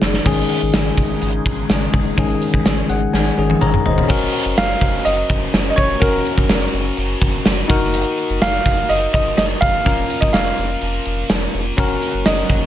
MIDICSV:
0, 0, Header, 1, 7, 480
1, 0, Start_track
1, 0, Tempo, 480000
1, 260, Time_signature, 4, 2, 24, 8
1, 12660, End_track
2, 0, Start_track
2, 0, Title_t, "Grand piano"
2, 0, Program_c, 0, 0
2, 4577, Note_on_c, 0, 77, 106
2, 5049, Note_on_c, 0, 75, 98
2, 5073, Note_off_c, 0, 77, 0
2, 5674, Note_off_c, 0, 75, 0
2, 5702, Note_on_c, 0, 75, 77
2, 5760, Note_on_c, 0, 73, 98
2, 5771, Note_off_c, 0, 75, 0
2, 5999, Note_on_c, 0, 70, 89
2, 6018, Note_off_c, 0, 73, 0
2, 6930, Note_off_c, 0, 70, 0
2, 8420, Note_on_c, 0, 77, 120
2, 8893, Note_on_c, 0, 75, 102
2, 8914, Note_off_c, 0, 77, 0
2, 9120, Note_off_c, 0, 75, 0
2, 9135, Note_on_c, 0, 75, 108
2, 9358, Note_off_c, 0, 75, 0
2, 9373, Note_on_c, 0, 75, 106
2, 9428, Note_off_c, 0, 75, 0
2, 9608, Note_on_c, 0, 77, 126
2, 10174, Note_off_c, 0, 77, 0
2, 10207, Note_on_c, 0, 75, 93
2, 10328, Note_on_c, 0, 77, 92
2, 10337, Note_off_c, 0, 75, 0
2, 11254, Note_off_c, 0, 77, 0
2, 12260, Note_on_c, 0, 75, 96
2, 12660, Note_off_c, 0, 75, 0
2, 12660, End_track
3, 0, Start_track
3, 0, Title_t, "Tine electric piano"
3, 0, Program_c, 1, 4
3, 0, Control_c, 1, 64, 127
3, 0, Note_on_c, 1, 51, 63
3, 0, Note_on_c, 1, 56, 57
3, 0, Note_on_c, 1, 61, 60
3, 0, Note_on_c, 1, 68, 71
3, 216, Note_off_c, 1, 51, 0
3, 221, Note_off_c, 1, 56, 0
3, 225, Note_off_c, 1, 61, 0
3, 230, Note_off_c, 1, 68, 0
3, 243, Note_on_c, 1, 51, 76
3, 252, Note_on_c, 1, 56, 72
3, 260, Note_on_c, 1, 61, 66
3, 268, Note_on_c, 1, 68, 85
3, 274, Control_c, 1, 64, 0
3, 455, Control_c, 1, 64, 127
3, 2133, Note_off_c, 1, 51, 0
3, 2137, Note_off_c, 1, 56, 0
3, 2141, Note_off_c, 1, 61, 0
3, 2145, Note_off_c, 1, 68, 0
3, 2168, Note_on_c, 1, 51, 79
3, 2174, Note_on_c, 1, 56, 69
3, 2184, Note_on_c, 1, 61, 69
3, 2191, Note_on_c, 1, 68, 85
3, 2896, Note_on_c, 1, 78, 74
3, 3121, Note_off_c, 1, 78, 0
3, 3134, Note_on_c, 1, 80, 70
3, 3349, Note_off_c, 1, 51, 0
3, 3353, Note_off_c, 1, 56, 0
3, 3358, Note_off_c, 1, 61, 0
3, 3361, Note_off_c, 1, 68, 0
3, 3373, Note_on_c, 1, 51, 59
3, 3376, Note_on_c, 1, 56, 56
3, 3380, Note_on_c, 1, 61, 57
3, 3384, Note_on_c, 1, 68, 70
3, 3583, Note_off_c, 1, 80, 0
3, 3611, Note_on_c, 1, 73, 66
3, 3613, Note_on_c, 1, 82, 70
3, 3620, Note_on_c, 1, 70, 54
3, 3843, Note_off_c, 1, 73, 0
3, 3848, Note_off_c, 1, 70, 0
3, 3858, Note_on_c, 1, 75, 70
3, 3863, Note_on_c, 1, 72, 57
3, 4062, Note_off_c, 1, 82, 0
3, 4071, Note_off_c, 1, 61, 0
3, 4083, Note_on_c, 1, 61, 84
3, 4096, Note_off_c, 1, 51, 0
3, 4096, Note_on_c, 1, 66, 74
3, 4098, Note_off_c, 1, 56, 0
3, 4102, Note_off_c, 1, 68, 0
3, 4108, Note_on_c, 1, 70, 87
3, 4114, Control_c, 1, 64, 0
3, 4302, Control_c, 1, 64, 127
3, 4315, Note_off_c, 1, 75, 0
3, 4318, Note_off_c, 1, 72, 0
3, 5973, Note_off_c, 1, 61, 0
3, 5979, Note_off_c, 1, 66, 0
3, 5985, Note_off_c, 1, 70, 0
3, 6001, Note_on_c, 1, 61, 70
3, 6012, Note_on_c, 1, 66, 65
3, 6022, Note_on_c, 1, 70, 76
3, 7656, Note_off_c, 1, 61, 0
3, 7662, Note_off_c, 1, 66, 0
3, 7667, Note_off_c, 1, 70, 0
3, 7678, Note_on_c, 1, 63, 83
3, 7689, Note_on_c, 1, 66, 76
3, 7703, Note_on_c, 1, 70, 94
3, 7711, Control_c, 1, 64, 0
3, 7895, Control_c, 1, 64, 127
3, 9570, Note_off_c, 1, 63, 0
3, 9576, Note_off_c, 1, 66, 0
3, 9583, Note_off_c, 1, 70, 0
3, 9847, Note_on_c, 1, 61, 71
3, 9857, Note_on_c, 1, 65, 61
3, 9870, Note_on_c, 1, 70, 76
3, 9871, Control_c, 1, 64, 0
3, 10074, Control_c, 1, 64, 127
3, 11735, Note_off_c, 1, 61, 0
3, 11740, Note_off_c, 1, 65, 0
3, 11746, Note_off_c, 1, 70, 0
3, 11773, Note_on_c, 1, 61, 86
3, 11782, Note_on_c, 1, 66, 75
3, 11793, Control_c, 1, 64, 0
3, 11795, Note_on_c, 1, 70, 90
3, 11990, Control_c, 1, 64, 127
3, 12660, Note_off_c, 1, 61, 0
3, 12660, Note_off_c, 1, 66, 0
3, 12660, Note_off_c, 1, 70, 0
3, 12660, End_track
4, 0, Start_track
4, 0, Title_t, "Analog synth pad"
4, 0, Program_c, 2, 89
4, 0, Note_on_c, 2, 49, 81
4, 0, Note_on_c, 2, 51, 70
4, 0, Note_on_c, 2, 56, 74
4, 0, Note_on_c, 2, 63, 84
4, 219, Note_off_c, 2, 49, 0
4, 239, Note_off_c, 2, 51, 0
4, 240, Note_off_c, 2, 63, 0
4, 241, Note_off_c, 2, 56, 0
4, 269, Note_on_c, 2, 63, 72
4, 272, Note_on_c, 2, 56, 74
4, 272, Note_on_c, 2, 68, 85
4, 277, Note_on_c, 2, 49, 76
4, 4066, Note_off_c, 2, 63, 0
4, 4067, Note_off_c, 2, 68, 0
4, 4068, Note_off_c, 2, 56, 0
4, 4070, Note_off_c, 2, 49, 0
4, 11787, Note_on_c, 2, 58, 76
4, 11789, Note_on_c, 2, 49, 87
4, 11789, Note_on_c, 2, 54, 77
4, 11790, Note_on_c, 2, 66, 92
4, 12660, Note_off_c, 2, 49, 0
4, 12660, Note_off_c, 2, 54, 0
4, 12660, Note_off_c, 2, 58, 0
4, 12660, Note_off_c, 2, 66, 0
4, 12660, End_track
5, 0, Start_track
5, 0, Title_t, "Distorted electric guitar"
5, 0, Program_c, 3, 30
5, 4084, Note_on_c, 3, 42, 89
5, 4097, Note_on_c, 3, 49, 102
5, 4104, Note_on_c, 3, 54, 107
5, 4555, Note_off_c, 3, 42, 0
5, 4567, Note_on_c, 3, 42, 61
5, 4569, Note_off_c, 3, 49, 0
5, 4581, Note_on_c, 3, 49, 63
5, 4592, Note_off_c, 3, 54, 0
5, 4596, Note_on_c, 3, 54, 69
5, 5027, Note_off_c, 3, 42, 0
5, 5039, Note_on_c, 3, 42, 65
5, 5060, Note_off_c, 3, 49, 0
5, 5072, Note_on_c, 3, 49, 72
5, 5096, Note_off_c, 3, 54, 0
5, 5100, Note_on_c, 3, 54, 74
5, 6003, Note_off_c, 3, 42, 0
5, 6013, Note_off_c, 3, 49, 0
5, 6015, Note_on_c, 3, 42, 86
5, 6025, Note_on_c, 3, 49, 87
5, 6030, Note_off_c, 3, 54, 0
5, 6034, Note_on_c, 3, 54, 99
5, 6475, Note_off_c, 3, 42, 0
5, 6486, Note_off_c, 3, 49, 0
5, 6487, Note_on_c, 3, 42, 61
5, 6498, Note_on_c, 3, 49, 68
5, 6509, Note_off_c, 3, 54, 0
5, 6513, Note_on_c, 3, 54, 73
5, 6954, Note_off_c, 3, 42, 0
5, 6966, Note_on_c, 3, 42, 71
5, 6971, Note_off_c, 3, 49, 0
5, 6983, Note_on_c, 3, 49, 78
5, 6989, Note_off_c, 3, 54, 0
5, 6993, Note_on_c, 3, 54, 83
5, 7693, Note_off_c, 3, 42, 0
5, 7694, Note_on_c, 3, 63, 90
5, 7699, Note_off_c, 3, 54, 0
5, 7701, Note_off_c, 3, 49, 0
5, 7703, Note_on_c, 3, 58, 77
5, 7713, Note_on_c, 3, 51, 62
5, 8398, Note_off_c, 3, 51, 0
5, 8410, Note_on_c, 3, 51, 71
5, 8417, Note_off_c, 3, 63, 0
5, 8420, Note_off_c, 3, 58, 0
5, 8424, Note_on_c, 3, 58, 71
5, 8438, Note_on_c, 3, 63, 75
5, 8873, Note_off_c, 3, 51, 0
5, 8885, Note_on_c, 3, 51, 64
5, 8909, Note_off_c, 3, 63, 0
5, 8917, Note_off_c, 3, 58, 0
5, 8921, Note_on_c, 3, 58, 77
5, 8945, Note_on_c, 3, 63, 75
5, 9851, Note_on_c, 3, 46, 85
5, 9852, Note_off_c, 3, 51, 0
5, 9861, Note_on_c, 3, 53, 88
5, 9865, Note_off_c, 3, 58, 0
5, 9869, Note_on_c, 3, 58, 96
5, 9882, Note_off_c, 3, 63, 0
5, 10318, Note_off_c, 3, 46, 0
5, 10330, Note_on_c, 3, 46, 69
5, 10331, Note_off_c, 3, 53, 0
5, 10343, Note_on_c, 3, 53, 67
5, 10351, Note_off_c, 3, 58, 0
5, 10355, Note_on_c, 3, 58, 70
5, 10792, Note_off_c, 3, 46, 0
5, 10804, Note_on_c, 3, 46, 65
5, 10821, Note_off_c, 3, 53, 0
5, 10837, Note_on_c, 3, 53, 71
5, 10861, Note_off_c, 3, 58, 0
5, 10865, Note_on_c, 3, 58, 75
5, 11767, Note_off_c, 3, 53, 0
5, 11771, Note_on_c, 3, 54, 91
5, 11772, Note_off_c, 3, 46, 0
5, 11781, Note_off_c, 3, 58, 0
5, 11785, Note_on_c, 3, 61, 101
5, 11792, Note_on_c, 3, 66, 102
5, 12249, Note_off_c, 3, 54, 0
5, 12253, Note_off_c, 3, 61, 0
5, 12253, Note_on_c, 3, 54, 61
5, 12265, Note_on_c, 3, 61, 69
5, 12275, Note_off_c, 3, 66, 0
5, 12279, Note_on_c, 3, 66, 72
5, 12660, Note_off_c, 3, 54, 0
5, 12660, Note_off_c, 3, 61, 0
5, 12660, Note_off_c, 3, 66, 0
5, 12660, End_track
6, 0, Start_track
6, 0, Title_t, "Analog synth bass"
6, 0, Program_c, 4, 38
6, 24, Note_on_c, 4, 30, 90
6, 195, Note_off_c, 4, 30, 0
6, 261, Note_on_c, 4, 32, 107
6, 434, Note_off_c, 4, 32, 0
6, 627, Note_on_c, 4, 32, 96
6, 710, Note_off_c, 4, 32, 0
6, 743, Note_on_c, 4, 32, 107
6, 914, Note_off_c, 4, 32, 0
6, 977, Note_on_c, 4, 32, 92
6, 1151, Note_off_c, 4, 32, 0
6, 1223, Note_on_c, 4, 32, 102
6, 1395, Note_off_c, 4, 32, 0
6, 1460, Note_on_c, 4, 32, 96
6, 1633, Note_off_c, 4, 32, 0
6, 1700, Note_on_c, 4, 32, 101
6, 1872, Note_off_c, 4, 32, 0
6, 1939, Note_on_c, 4, 30, 85
6, 2112, Note_off_c, 4, 30, 0
6, 2181, Note_on_c, 4, 32, 107
6, 2353, Note_off_c, 4, 32, 0
6, 2539, Note_on_c, 4, 32, 87
6, 2626, Note_off_c, 4, 32, 0
6, 2656, Note_on_c, 4, 32, 110
6, 2830, Note_off_c, 4, 32, 0
6, 2895, Note_on_c, 4, 32, 108
6, 3069, Note_off_c, 4, 32, 0
6, 3137, Note_on_c, 4, 32, 98
6, 3311, Note_off_c, 4, 32, 0
6, 3381, Note_on_c, 4, 32, 94
6, 3553, Note_off_c, 4, 32, 0
6, 3617, Note_on_c, 4, 32, 107
6, 3791, Note_off_c, 4, 32, 0
6, 3859, Note_on_c, 4, 29, 87
6, 4032, Note_off_c, 4, 29, 0
6, 4101, Note_on_c, 4, 30, 115
6, 4273, Note_off_c, 4, 30, 0
6, 4457, Note_on_c, 4, 30, 99
6, 4544, Note_off_c, 4, 30, 0
6, 4579, Note_on_c, 4, 30, 117
6, 4752, Note_off_c, 4, 30, 0
6, 4816, Note_on_c, 4, 30, 113
6, 4990, Note_off_c, 4, 30, 0
6, 5060, Note_on_c, 4, 30, 114
6, 5233, Note_off_c, 4, 30, 0
6, 5299, Note_on_c, 4, 30, 92
6, 5472, Note_off_c, 4, 30, 0
6, 5538, Note_on_c, 4, 30, 114
6, 5712, Note_off_c, 4, 30, 0
6, 5779, Note_on_c, 4, 29, 91
6, 5952, Note_off_c, 4, 29, 0
6, 6017, Note_on_c, 4, 30, 114
6, 6191, Note_off_c, 4, 30, 0
6, 6379, Note_on_c, 4, 30, 102
6, 6465, Note_off_c, 4, 30, 0
6, 6502, Note_on_c, 4, 30, 106
6, 6674, Note_off_c, 4, 30, 0
6, 6739, Note_on_c, 4, 30, 101
6, 6912, Note_off_c, 4, 30, 0
6, 6981, Note_on_c, 4, 30, 105
6, 7153, Note_off_c, 4, 30, 0
6, 7217, Note_on_c, 4, 30, 99
6, 7391, Note_off_c, 4, 30, 0
6, 7463, Note_on_c, 4, 30, 102
6, 7634, Note_off_c, 4, 30, 0
6, 7699, Note_on_c, 4, 30, 99
6, 8045, Note_off_c, 4, 30, 0
6, 8302, Note_on_c, 4, 30, 100
6, 8388, Note_off_c, 4, 30, 0
6, 8423, Note_on_c, 4, 30, 106
6, 8594, Note_off_c, 4, 30, 0
6, 8660, Note_on_c, 4, 30, 107
6, 8832, Note_off_c, 4, 30, 0
6, 8900, Note_on_c, 4, 30, 106
6, 9073, Note_off_c, 4, 30, 0
6, 9142, Note_on_c, 4, 30, 101
6, 9314, Note_off_c, 4, 30, 0
6, 9378, Note_on_c, 4, 30, 108
6, 9552, Note_off_c, 4, 30, 0
6, 9621, Note_on_c, 4, 30, 96
6, 9793, Note_off_c, 4, 30, 0
6, 9861, Note_on_c, 4, 29, 108
6, 10033, Note_off_c, 4, 29, 0
6, 10223, Note_on_c, 4, 29, 103
6, 10308, Note_off_c, 4, 29, 0
6, 10347, Note_on_c, 4, 29, 114
6, 10517, Note_off_c, 4, 29, 0
6, 10589, Note_on_c, 4, 29, 103
6, 10758, Note_off_c, 4, 29, 0
6, 10824, Note_on_c, 4, 29, 108
6, 10995, Note_off_c, 4, 29, 0
6, 11065, Note_on_c, 4, 29, 94
6, 11236, Note_off_c, 4, 29, 0
6, 11303, Note_on_c, 4, 29, 106
6, 11475, Note_off_c, 4, 29, 0
6, 11546, Note_on_c, 4, 29, 96
6, 11717, Note_off_c, 4, 29, 0
6, 11782, Note_on_c, 4, 30, 120
6, 11954, Note_off_c, 4, 30, 0
6, 12144, Note_on_c, 4, 30, 92
6, 12228, Note_off_c, 4, 30, 0
6, 12266, Note_on_c, 4, 30, 113
6, 12436, Note_off_c, 4, 30, 0
6, 12499, Note_on_c, 4, 30, 108
6, 12660, Note_off_c, 4, 30, 0
6, 12660, End_track
7, 0, Start_track
7, 0, Title_t, "Drums"
7, 15, Note_on_c, 9, 38, 96
7, 115, Note_off_c, 9, 38, 0
7, 137, Note_on_c, 9, 38, 83
7, 237, Note_off_c, 9, 38, 0
7, 257, Note_on_c, 9, 49, 90
7, 258, Note_on_c, 9, 36, 108
7, 357, Note_off_c, 9, 49, 0
7, 358, Note_off_c, 9, 36, 0
7, 496, Note_on_c, 9, 42, 72
7, 596, Note_off_c, 9, 42, 0
7, 736, Note_on_c, 9, 38, 116
7, 736, Note_on_c, 9, 42, 97
7, 736, Note_on_c, 9, 54, 62
7, 836, Note_off_c, 9, 38, 0
7, 836, Note_off_c, 9, 42, 0
7, 836, Note_off_c, 9, 54, 0
7, 975, Note_on_c, 9, 36, 93
7, 980, Note_on_c, 9, 42, 72
7, 1075, Note_off_c, 9, 36, 0
7, 1080, Note_off_c, 9, 42, 0
7, 1216, Note_on_c, 9, 42, 79
7, 1316, Note_off_c, 9, 42, 0
7, 1456, Note_on_c, 9, 42, 68
7, 1458, Note_on_c, 9, 36, 103
7, 1556, Note_off_c, 9, 42, 0
7, 1558, Note_off_c, 9, 36, 0
7, 1696, Note_on_c, 9, 38, 118
7, 1698, Note_on_c, 9, 42, 89
7, 1698, Note_on_c, 9, 54, 63
7, 1796, Note_off_c, 9, 38, 0
7, 1798, Note_off_c, 9, 42, 0
7, 1798, Note_off_c, 9, 54, 0
7, 1817, Note_on_c, 9, 42, 52
7, 1917, Note_off_c, 9, 42, 0
7, 1935, Note_on_c, 9, 46, 62
7, 1936, Note_on_c, 9, 36, 96
7, 2035, Note_off_c, 9, 46, 0
7, 2036, Note_off_c, 9, 36, 0
7, 2176, Note_on_c, 9, 42, 97
7, 2177, Note_on_c, 9, 36, 112
7, 2276, Note_off_c, 9, 42, 0
7, 2277, Note_off_c, 9, 36, 0
7, 2301, Note_on_c, 9, 42, 49
7, 2401, Note_off_c, 9, 42, 0
7, 2418, Note_on_c, 9, 42, 72
7, 2518, Note_off_c, 9, 42, 0
7, 2537, Note_on_c, 9, 36, 92
7, 2637, Note_off_c, 9, 36, 0
7, 2656, Note_on_c, 9, 38, 126
7, 2656, Note_on_c, 9, 42, 96
7, 2656, Note_on_c, 9, 54, 64
7, 2756, Note_off_c, 9, 38, 0
7, 2756, Note_off_c, 9, 42, 0
7, 2756, Note_off_c, 9, 54, 0
7, 2896, Note_on_c, 9, 42, 76
7, 2996, Note_off_c, 9, 42, 0
7, 3137, Note_on_c, 9, 38, 58
7, 3237, Note_off_c, 9, 38, 0
7, 3498, Note_on_c, 9, 48, 69
7, 3598, Note_off_c, 9, 48, 0
7, 3615, Note_on_c, 9, 47, 87
7, 3715, Note_off_c, 9, 47, 0
7, 3738, Note_on_c, 9, 45, 83
7, 3838, Note_off_c, 9, 45, 0
7, 3856, Note_on_c, 9, 43, 94
7, 3956, Note_off_c, 9, 43, 0
7, 3979, Note_on_c, 9, 43, 93
7, 4079, Note_off_c, 9, 43, 0
7, 4098, Note_on_c, 9, 36, 121
7, 4100, Note_on_c, 9, 49, 113
7, 4198, Note_off_c, 9, 36, 0
7, 4200, Note_off_c, 9, 49, 0
7, 4338, Note_on_c, 9, 42, 81
7, 4438, Note_off_c, 9, 42, 0
7, 4577, Note_on_c, 9, 38, 125
7, 4577, Note_on_c, 9, 42, 107
7, 4577, Note_on_c, 9, 54, 66
7, 4677, Note_off_c, 9, 38, 0
7, 4677, Note_off_c, 9, 42, 0
7, 4677, Note_off_c, 9, 54, 0
7, 4814, Note_on_c, 9, 36, 94
7, 4818, Note_on_c, 9, 42, 80
7, 4914, Note_off_c, 9, 36, 0
7, 4918, Note_off_c, 9, 42, 0
7, 5056, Note_on_c, 9, 42, 89
7, 5156, Note_off_c, 9, 42, 0
7, 5297, Note_on_c, 9, 42, 69
7, 5298, Note_on_c, 9, 36, 101
7, 5397, Note_off_c, 9, 42, 0
7, 5398, Note_off_c, 9, 36, 0
7, 5538, Note_on_c, 9, 38, 127
7, 5540, Note_on_c, 9, 42, 94
7, 5541, Note_on_c, 9, 54, 64
7, 5638, Note_off_c, 9, 38, 0
7, 5640, Note_off_c, 9, 42, 0
7, 5641, Note_off_c, 9, 54, 0
7, 5777, Note_on_c, 9, 36, 99
7, 5778, Note_on_c, 9, 42, 65
7, 5877, Note_off_c, 9, 36, 0
7, 5878, Note_off_c, 9, 42, 0
7, 6016, Note_on_c, 9, 36, 122
7, 6016, Note_on_c, 9, 42, 108
7, 6116, Note_off_c, 9, 36, 0
7, 6116, Note_off_c, 9, 42, 0
7, 6255, Note_on_c, 9, 42, 81
7, 6355, Note_off_c, 9, 42, 0
7, 6376, Note_on_c, 9, 36, 102
7, 6476, Note_off_c, 9, 36, 0
7, 6494, Note_on_c, 9, 38, 127
7, 6494, Note_on_c, 9, 54, 66
7, 6495, Note_on_c, 9, 42, 111
7, 6594, Note_off_c, 9, 38, 0
7, 6594, Note_off_c, 9, 54, 0
7, 6595, Note_off_c, 9, 42, 0
7, 6735, Note_on_c, 9, 42, 83
7, 6835, Note_off_c, 9, 42, 0
7, 6972, Note_on_c, 9, 42, 88
7, 7072, Note_off_c, 9, 42, 0
7, 7212, Note_on_c, 9, 42, 74
7, 7215, Note_on_c, 9, 36, 102
7, 7312, Note_off_c, 9, 42, 0
7, 7315, Note_off_c, 9, 36, 0
7, 7455, Note_on_c, 9, 38, 124
7, 7457, Note_on_c, 9, 42, 97
7, 7457, Note_on_c, 9, 54, 65
7, 7555, Note_off_c, 9, 38, 0
7, 7557, Note_off_c, 9, 42, 0
7, 7557, Note_off_c, 9, 54, 0
7, 7697, Note_on_c, 9, 36, 111
7, 7697, Note_on_c, 9, 42, 69
7, 7797, Note_off_c, 9, 36, 0
7, 7797, Note_off_c, 9, 42, 0
7, 7938, Note_on_c, 9, 42, 105
7, 8038, Note_off_c, 9, 42, 0
7, 8178, Note_on_c, 9, 42, 82
7, 8278, Note_off_c, 9, 42, 0
7, 8297, Note_on_c, 9, 42, 51
7, 8397, Note_off_c, 9, 42, 0
7, 8417, Note_on_c, 9, 38, 126
7, 8417, Note_on_c, 9, 42, 113
7, 8417, Note_on_c, 9, 54, 64
7, 8517, Note_off_c, 9, 38, 0
7, 8517, Note_off_c, 9, 42, 0
7, 8517, Note_off_c, 9, 54, 0
7, 8657, Note_on_c, 9, 36, 91
7, 8661, Note_on_c, 9, 42, 81
7, 8757, Note_off_c, 9, 36, 0
7, 8761, Note_off_c, 9, 42, 0
7, 8897, Note_on_c, 9, 42, 86
7, 8997, Note_off_c, 9, 42, 0
7, 9139, Note_on_c, 9, 42, 68
7, 9140, Note_on_c, 9, 36, 107
7, 9239, Note_off_c, 9, 42, 0
7, 9240, Note_off_c, 9, 36, 0
7, 9378, Note_on_c, 9, 38, 121
7, 9380, Note_on_c, 9, 42, 100
7, 9380, Note_on_c, 9, 54, 65
7, 9478, Note_off_c, 9, 38, 0
7, 9480, Note_off_c, 9, 42, 0
7, 9480, Note_off_c, 9, 54, 0
7, 9620, Note_on_c, 9, 36, 102
7, 9620, Note_on_c, 9, 42, 67
7, 9720, Note_off_c, 9, 36, 0
7, 9720, Note_off_c, 9, 42, 0
7, 9740, Note_on_c, 9, 42, 46
7, 9840, Note_off_c, 9, 42, 0
7, 9860, Note_on_c, 9, 36, 121
7, 9861, Note_on_c, 9, 42, 103
7, 9960, Note_off_c, 9, 36, 0
7, 9961, Note_off_c, 9, 42, 0
7, 10101, Note_on_c, 9, 42, 84
7, 10201, Note_off_c, 9, 42, 0
7, 10222, Note_on_c, 9, 36, 100
7, 10224, Note_on_c, 9, 42, 51
7, 10322, Note_off_c, 9, 36, 0
7, 10324, Note_off_c, 9, 42, 0
7, 10339, Note_on_c, 9, 54, 67
7, 10340, Note_on_c, 9, 38, 127
7, 10340, Note_on_c, 9, 42, 104
7, 10439, Note_off_c, 9, 38, 0
7, 10439, Note_off_c, 9, 54, 0
7, 10440, Note_off_c, 9, 42, 0
7, 10577, Note_on_c, 9, 42, 84
7, 10677, Note_off_c, 9, 42, 0
7, 10817, Note_on_c, 9, 42, 90
7, 10917, Note_off_c, 9, 42, 0
7, 11056, Note_on_c, 9, 42, 70
7, 11156, Note_off_c, 9, 42, 0
7, 11297, Note_on_c, 9, 38, 125
7, 11299, Note_on_c, 9, 42, 91
7, 11299, Note_on_c, 9, 54, 69
7, 11397, Note_off_c, 9, 38, 0
7, 11399, Note_off_c, 9, 42, 0
7, 11399, Note_off_c, 9, 54, 0
7, 11539, Note_on_c, 9, 46, 66
7, 11639, Note_off_c, 9, 46, 0
7, 11657, Note_on_c, 9, 42, 46
7, 11757, Note_off_c, 9, 42, 0
7, 11779, Note_on_c, 9, 36, 119
7, 11779, Note_on_c, 9, 42, 104
7, 11879, Note_off_c, 9, 36, 0
7, 11879, Note_off_c, 9, 42, 0
7, 12018, Note_on_c, 9, 42, 80
7, 12118, Note_off_c, 9, 42, 0
7, 12256, Note_on_c, 9, 54, 62
7, 12257, Note_on_c, 9, 38, 125
7, 12257, Note_on_c, 9, 42, 107
7, 12356, Note_off_c, 9, 54, 0
7, 12357, Note_off_c, 9, 38, 0
7, 12357, Note_off_c, 9, 42, 0
7, 12496, Note_on_c, 9, 36, 95
7, 12496, Note_on_c, 9, 42, 84
7, 12596, Note_off_c, 9, 36, 0
7, 12596, Note_off_c, 9, 42, 0
7, 12660, End_track
0, 0, End_of_file